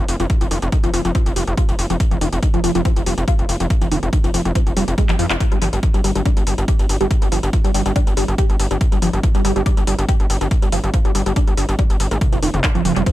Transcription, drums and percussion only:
0.08 open hi-hat loud
0.20 closed hi-hat soft
0.30 kick loud
0.30 closed hi-hat medium
0.41 closed hi-hat soft
0.51 open hi-hat loud
0.62 closed hi-hat medium
0.72 kick loud
0.72 closed hi-hat medium
0.84 closed hi-hat soft
0.94 open hi-hat loud
1.05 closed hi-hat soft
1.15 kick loud
1.15 closed hi-hat medium
1.26 closed hi-hat soft
1.36 open hi-hat loud
1.47 closed hi-hat soft
1.57 kick loud
1.57 closed hi-hat medium
1.69 closed hi-hat soft
1.79 open hi-hat loud
1.90 closed hi-hat soft
2.00 kick loud
2.00 closed hi-hat medium
2.11 closed hi-hat soft
2.21 open hi-hat medium
2.33 closed hi-hat medium
2.43 kick loud
2.43 closed hi-hat medium
2.54 closed hi-hat soft
2.64 open hi-hat loud
2.75 closed hi-hat medium
2.85 kick loud
2.85 closed hi-hat medium
2.96 closed hi-hat medium
3.06 open hi-hat loud
3.18 closed hi-hat medium
3.28 kick loud
3.28 closed hi-hat medium
3.39 closed hi-hat medium
3.49 open hi-hat loud
3.60 closed hi-hat medium
3.70 kick loud
3.70 closed hi-hat medium
3.82 closed hi-hat medium
3.92 open hi-hat loud
4.03 closed hi-hat medium
4.13 kick loud
4.13 closed hi-hat medium
4.24 closed hi-hat medium
4.34 open hi-hat loud
4.45 closed hi-hat medium
4.55 kick loud
4.55 closed hi-hat loud
4.67 closed hi-hat medium
4.77 open hi-hat loud
4.88 closed hi-hat medium
4.98 kick loud
4.98 closed hi-hat medium
5.09 clap medium
5.09 closed hi-hat medium
5.19 open hi-hat loud
5.30 clap loud
5.30 closed hi-hat medium
5.40 kick loud
5.40 closed hi-hat loud
5.52 closed hi-hat medium
5.62 open hi-hat loud
5.73 closed hi-hat medium
5.83 kick loud
5.83 closed hi-hat medium
5.94 closed hi-hat medium
6.04 open hi-hat loud
6.15 closed hi-hat medium
6.26 kick loud
6.26 closed hi-hat medium
6.37 closed hi-hat medium
6.47 open hi-hat loud
6.58 closed hi-hat medium
6.68 kick loud
6.68 closed hi-hat loud
6.79 closed hi-hat medium
6.89 open hi-hat loud
7.01 closed hi-hat medium
7.11 kick loud
7.11 closed hi-hat loud
7.22 closed hi-hat medium
7.32 open hi-hat loud
7.43 closed hi-hat medium
7.53 kick loud
7.53 closed hi-hat loud
7.64 closed hi-hat medium
7.74 open hi-hat loud
7.86 closed hi-hat medium
7.96 kick loud
7.96 closed hi-hat loud
8.07 closed hi-hat medium
8.17 open hi-hat loud
8.28 closed hi-hat medium
8.38 kick loud
8.38 closed hi-hat medium
8.50 closed hi-hat medium
8.60 open hi-hat loud
8.71 closed hi-hat medium
8.81 kick loud
8.81 closed hi-hat loud
8.92 closed hi-hat medium
9.02 open hi-hat loud
9.13 closed hi-hat medium
9.23 kick loud
9.23 closed hi-hat medium
9.35 closed hi-hat medium
9.45 open hi-hat loud
9.56 closed hi-hat medium
9.66 kick loud
9.66 closed hi-hat medium
9.77 closed hi-hat medium
9.87 open hi-hat loud
9.99 closed hi-hat medium
10.09 kick loud
10.09 closed hi-hat medium
10.20 closed hi-hat medium
10.30 open hi-hat loud
10.41 closed hi-hat medium
10.51 kick loud
10.51 closed hi-hat medium
10.62 closed hi-hat medium
10.72 open hi-hat loud
10.84 closed hi-hat medium
10.94 kick loud
10.94 closed hi-hat medium
11.05 closed hi-hat medium
11.15 open hi-hat loud
11.26 closed hi-hat medium
11.36 kick loud
11.36 closed hi-hat medium
11.47 closed hi-hat medium
11.57 open hi-hat loud
11.69 closed hi-hat medium
11.79 kick loud
11.79 closed hi-hat medium
11.90 closed hi-hat medium
12.00 open hi-hat loud
12.11 closed hi-hat medium
12.21 kick loud
12.21 closed hi-hat medium
12.21 mid tom medium
12.33 closed hi-hat medium
12.43 open hi-hat loud
12.54 closed hi-hat medium
12.54 mid tom medium
12.64 kick loud
12.64 clap loud
12.64 closed hi-hat medium
12.75 closed hi-hat soft
12.85 open hi-hat loud
12.85 mid tom medium
12.96 closed hi-hat soft
13.06 kick loud
13.06 closed hi-hat medium

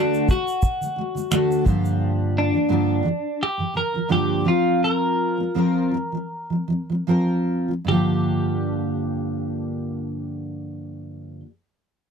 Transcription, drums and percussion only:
0.14 shaker soft
0.29 kick medium
0.29 shaker soft
0.48 shaker soft
0.62 kick medium
0.62 shaker medium
0.82 shaker soft
1.17 shaker soft
1.32 finger snap medium
1.32 shaker medium
1.51 shaker soft
1.66 kick medium
1.66 shaker soft
1.85 shaker soft

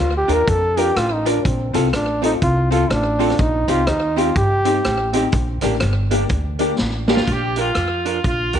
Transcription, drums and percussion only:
0.29 closed hi-hat loud
0.48 kick loud
0.48 closed hi-hat medium
0.77 closed hi-hat medium
0.96 cross-stick loud
0.96 closed hi-hat medium
1.26 closed hi-hat loud
1.45 kick loud
1.45 closed hi-hat medium
1.74 cross-stick medium
1.74 closed hi-hat loud
1.93 cross-stick loud
1.93 closed hi-hat medium
2.23 closed hi-hat loud
2.42 kick loud
2.42 closed hi-hat medium
2.72 closed hi-hat medium
2.90 cross-stick loud
2.90 closed hi-hat medium
3.20 open hi-hat medium
3.30 cross-stick medium
3.39 kick loud
3.39 closed hi-hat medium
3.68 closed hi-hat loud
3.87 cross-stick loud
3.87 closed hi-hat medium
4.18 closed hi-hat loud
4.36 kick loud
4.36 closed hi-hat medium
4.65 closed hi-hat medium
4.84 cross-stick loud
4.84 closed hi-hat medium
5.13 closed hi-hat loud
5.32 kick loud
5.32 closed hi-hat medium
5.61 cross-stick medium
5.61 closed hi-hat medium
5.80 cross-stick loud
5.80 closed hi-hat medium
6.11 closed hi-hat loud
6.29 kick loud
6.29 closed hi-hat medium
6.59 closed hi-hat medium
6.78 snare medium
7.08 snare medium
7.17 snare loud
7.27 kick loud
7.27 closed hi-hat medium
7.56 closed hi-hat medium
7.75 cross-stick loud
7.75 closed hi-hat medium
8.06 closed hi-hat medium
8.24 kick loud
8.24 closed hi-hat medium
8.53 closed hi-hat medium

